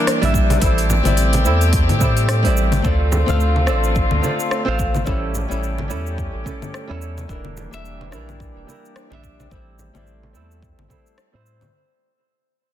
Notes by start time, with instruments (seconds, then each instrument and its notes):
Already playing: string section E3 A#3 D4 G4, nylon-string guitar G3 D4 E4 A#4
0.07 cross-stick, open hi-hat, shaker
0.22 analog synth bass A#1, nylon-string guitar G3 D4 E4 E5, open hi-hat, low conga
0.34 kick, shaker
0.50 open hi-hat, high conga, shaker
0.60 analog synth bass A1, nylon-string guitar G3 C4 E4 A4, string section A3 C4 G4, kick, open hi-hat, shaker
0.78 open hi-hat
0.90 low conga, shaker
1.04 analog synth bass A1, nylon-string guitar G3 C4 E4 D5, open hi-hat, low conga, shaker
1.17 open hi-hat, shaker
1.33 open hi-hat, high conga
1.44 analog synth bass E2, nylon-string guitar G3 C4 E4 A4, shaker
1.61 open hi-hat, shaker
1.73 kick, open hi-hat, shaker
1.89 analog synth bass A2, open hi-hat, low conga
1.99 nylon-string guitar G3 C4 E4 A4, kick, high conga, shaker
2.17 open hi-hat, shaker
2.29 cross-stick, open hi-hat, shaker
2.43 analog synth bass A1, nylon-string guitar G3 C4 E4 D5, open hi-hat
2.57 shaker
2.72 open hi-hat, high conga, low conga, shaker
2.82 analog synth bass D2, string section D3 C4 F4, nylon-string guitar C4 F4 A4 D5, kick, shaker
3.12 low conga, shaker
3.26 analog synth bass D2, nylon-string guitar C4 F4 A4 F5, low conga, shaker
3.40 shaker
3.56 high conga
3.66 analog synth bass A1, nylon-string guitar C4 F4 A4 D5, cross-stick, shaker
3.84 shaker
3.96 kick, shaker
4.11 analog synth bass D2, low conga
4.22 nylon-string guitar C4 F4 A4 D5, high conga, shaker
4.40 shaker
4.51 cross-stick, shaker
4.65 analog synth bass A1, nylon-string guitar C4 F4 A4 F5
4.79 kick, shaker
4.95 high conga, low conga, shaker
5.04 analog synth bass A1, nylon-string guitar G3 C#4 E4 A4, string section C#4 G4, kick, shaker
5.35 low conga, shaker
5.48 analog synth bass A1, nylon-string guitar G3 C#4 E4 A4, shaker
5.63 shaker
5.78 high conga, low conga
5.88 analog synth bass E2, nylon-string guitar G3 C#4 E4 A4, shaker
6.07 shaker
6.18 kick, shaker
6.35 analog synth bass A1
6.44 nylon-string guitar G3 C#4 E4 A4, kick, high conga, shaker
6.62 low conga, shaker
6.74 cross-stick, shaker
6.88 analog synth bass E2, nylon-string guitar G3 C#4 E4 A4
7.02 shaker
7.18 high conga, shaker
7.28 analog synth bass E1, string section E3 A#3 D4 G4, nylon-string guitar G3 D4 E4 A#4, kick, shaker
7.45 low conga
7.57 low conga, shaker
7.71 analog synth bass E1, nylon-string guitar G3 D4 E5, shaker
7.85 shaker
8.01 high conga
8.11 analog synth bass A#1, nylon-string guitar G3 D4 E4 A#4, cross-stick, shaker
8.29 low conga, shaker
8.40 kick, shaker
8.56 analog synth bass E1
8.67 nylon-string guitar G3 D4 E4 A#4, high conga, shaker
8.85 shaker
8.96 cross-stick, shaker
9.10 analog synth bass A#1, nylon-string guitar G3 D4 E5, low conga
9.24 kick, shaker
9.40 high conga, shaker
9.50 analog synth bass A1, nylon-string guitar G3 C4 E4 A4, string section A3 C4, kick, shaker
9.79 low conga, shaker
9.94 analog synth bass A1, nylon-string guitar G3 C4 E4 D5, low conga, shaker
10.07 shaker
10.23 high conga
10.33 analog synth bass E2, nylon-string guitar G3 C4 E4 A4, shaker
10.51 shaker
10.62 kick, shaker
10.79 analog synth bass A1, low conga
10.88 nylon-string guitar G3 C4 E4 A4, kick, high conga, shaker
11.07 shaker
11.18 cross-stick, shaker
11.33 analog synth bass A2, nylon-string guitar G3 C4 E4 C5
11.46 shaker
11.61 high conga, low conga, shaker